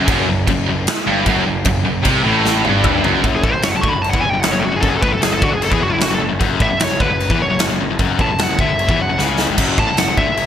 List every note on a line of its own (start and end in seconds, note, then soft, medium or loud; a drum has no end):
0.08 0.26 F#1 loud
0.08 0.27 F#2 loud
0.08 kick loud
0.08 crash medium
0.27 0.46 F#1 medium
0.27 0.45 F#2 medium
0.47 0.66 F#1 medium
0.47 0.65 F#2 medium
0.47 kick medium
0.47 crash medium
0.67 0.86 F#1 medium
0.67 0.84 F#2 medium
0.87 snare loud
0.87 crash medium
1.07 1.25 G1 medium
1.07 1.26 G2 loud
1.26 1.45 F#1 medium
1.26 1.45 F#2 loud
1.26 kick medium
1.26 crash medium
1.46 1.65 F#1 medium
1.46 1.62 F#2 medium
1.65 1.84 F#1 medium
1.65 1.82 F#2 medium
1.65 kick loud
1.65 crash medium
1.85 2.04 F#1 medium
1.85 2.01 F#2 medium
2.04 2.24 C2 medium
2.04 2.23 C3 loud
2.04 kick medium
2.04 crash medium
2.23 2.62 A1 medium
2.23 2.63 A2 loud
2.45 snare medium
2.65 3.02 G1 medium
2.65 3.03 G2 loud
2.65 high tom medium
2.84 kick medium
2.84 mid tom loud
3.03 3.23 F#1 loud
3.03 3.23 F#2 loud
3.03 floor tom loud
3.23 3.42 F#1 medium
3.23 3.44 F#2 loud
3.23 kick loud
3.23 china medium
3.36 3.44 G#4 medium
3.43 3.53 A1 medium
3.43 3.53 A2 medium
3.43 3.52 A4 medium
3.43 kick loud
3.52 3.63 F#1 medium
3.52 3.62 F#2 medium
3.52 3.63 C5 medium
3.62 3.73 F#1 medium
3.62 3.74 F#2 medium
3.62 3.70 C#5 medium
3.62 snare loud
3.62 china medium
3.69 3.76 F#5 medium
3.75 3.82 F#1 medium
3.75 3.84 F#2 medium
3.75 3.83 A5 medium
3.81 3.93 D2 medium
3.81 3.93 D3 loud
3.81 3.89 C#6 loud
3.81 kick loud
3.89 4.01 B5 medium
3.94 4.13 F#1 medium
3.94 4.10 F#2 medium
4.02 4.10 A5 medium
4.02 china medium
4.11 4.23 E2 medium
4.11 4.23 E3 loud
4.11 4.21 F#5 medium
4.11 kick loud
4.21 4.33 F#1 medium
4.21 4.32 F#2 medium
4.21 4.29 G#5 loud
4.29 4.43 F#2 medium
4.29 4.40 G5 medium
4.34 4.43 F#1 medium
4.41 4.52 F#2 medium
4.41 4.52 F#5 medium
4.41 snare loud
4.41 china medium
4.45 4.53 F#1 medium
4.52 4.63 F#1 medium
4.52 4.61 F#2 medium
4.52 4.62 C#5 medium
4.59 4.71 F#2 medium
4.59 4.65 A4 medium
4.65 4.74 F#1 medium
4.65 4.76 F#4 medium
4.72 4.82 F#1 medium
4.72 4.79 F#2 medium
4.76 4.81 G#4 medium
4.80 5.02 F#1 medium
4.80 5.01 F#2 loud
4.80 4.89 A4 medium
4.80 kick loud
4.80 china medium
4.90 4.96 G#4 medium
4.96 5.02 A4 medium
5.02 5.12 A1 medium
5.02 5.12 A2 medium
5.02 5.12 B4 medium
5.02 kick loud
5.12 5.22 F#1 medium
5.12 5.20 F#2 medium
5.12 5.23 A4 medium
5.21 5.31 F#1 medium
5.21 5.31 F#2 medium
5.21 5.33 G#4 medium
5.21 snare loud
5.21 china medium
5.32 5.41 F#1 medium
5.32 5.43 F#2 medium
5.32 5.43 A4 medium
5.41 5.51 D2 medium
5.41 5.51 D3 loud
5.41 5.53 F#4 medium
5.41 kick loud
5.51 5.71 F#1 medium
5.51 5.68 F#2 medium
5.51 5.63 G#4 medium
5.62 5.72 A4 medium
5.62 china medium
5.71 5.81 E2 medium
5.71 5.81 E3 medium
5.71 5.82 G#4 medium
5.71 kick loud
5.81 5.91 F#1 medium
5.81 5.89 F#2 medium
5.81 5.93 F#4 medium
5.90 6.01 F#1 medium
5.90 5.97 F#2 medium
5.90 6.02 E4 medium
5.98 6.10 F#1 medium
5.98 6.09 F#2 medium
5.98 snare loud
5.98 china medium
6.03 6.12 F#4 medium
6.11 6.20 F#1 medium
6.11 6.19 F#2 medium
6.11 6.20 A4 medium
6.20 6.31 F#1 medium
6.20 6.28 F#2 medium
6.29 6.40 F#1 medium
6.29 6.38 F#2 medium
6.39 6.60 F#1 medium
6.39 6.60 F#2 loud
6.39 kick loud
6.39 china medium
6.59 6.70 A1 medium
6.59 6.70 A2 loud
6.59 6.84 E5 medium
6.59 kick loud
6.70 6.80 F#1 medium
6.70 6.80 F#2 medium
6.80 6.90 F#1 medium
6.80 6.90 F#2 medium
6.80 snare loud
6.80 china medium
6.84 7.02 C#5 medium
6.90 6.99 F#1 medium
6.90 7.01 F#2 medium
7.00 7.09 D2 medium
7.00 7.10 D3 loud
7.00 7.38 B4 medium
7.00 kick loud
7.09 7.29 F#1 medium
7.09 7.27 F#2 medium
7.20 china medium
7.30 7.40 E2 medium
7.30 7.41 E3 loud
7.30 kick loud
7.40 7.49 F#1 medium
7.40 7.49 F#2 medium
7.40 7.61 C#5 loud
7.50 7.60 F#1 medium
7.50 7.58 F#2 medium
7.59 7.70 F#1 medium
7.59 7.68 F#2 medium
7.59 snare loud
7.59 china medium
7.70 7.80 F#1 medium
7.70 7.79 F#2 medium
7.81 7.89 F#1 medium
7.81 7.89 F#2 medium
7.90 7.99 F#1 medium
7.90 7.99 F#2 medium
7.99 8.19 F#1 medium
7.99 8.20 F#2 loud
7.99 kick loud
7.99 china medium
8.19 8.29 A1 medium
8.19 8.29 A2 loud
8.19 8.40 A5 loud
8.19 kick loud
8.31 8.40 F#1 medium
8.31 8.38 F#2 medium
8.39 8.49 F#1 medium
8.39 8.49 F#2 medium
8.39 snare loud
8.39 china medium
8.43 8.60 F#5 medium
8.49 8.58 F#1 medium
8.49 8.60 F#2 medium
8.59 8.68 D2 medium
8.59 8.70 D3 loud
8.59 9.00 E5 medium
8.59 kick loud
8.68 8.88 F#1 medium
8.68 8.86 F#2 medium
8.79 china medium
8.88 8.98 E2 medium
8.88 9.00 E3 loud
8.88 kick loud
9.00 9.09 F#1 medium
9.00 9.08 F#2 medium
9.00 9.20 F#5 medium
9.10 9.20 F#1 medium
9.10 9.20 F#2 medium
9.18 9.48 C#2 medium
9.18 9.48 C#3 loud
9.18 snare medium
9.38 snare medium
9.47 9.58 G1 medium
9.47 9.57 G2 medium
9.57 9.77 F#1 medium
9.57 9.78 F#2 loud
9.57 kick medium
9.57 crash loud
9.57 china medium
9.78 9.88 A1 medium
9.78 9.88 A2 loud
9.78 9.98 A5 loud
9.78 kick loud
9.88 9.99 F#1 medium
9.88 9.97 F#2 medium
9.97 10.09 F#1 medium
9.97 10.07 F#2 medium
9.97 10.18 F#5 medium
9.97 snare loud
9.97 china medium
10.08 10.17 F#1 medium
10.08 10.19 F#2 medium
10.17 10.28 D2 medium
10.17 10.28 D3 medium
10.17 10.46 E5 medium
10.17 kick loud
10.27 10.46 F#1 medium
10.27 10.44 F#2 medium
10.37 china medium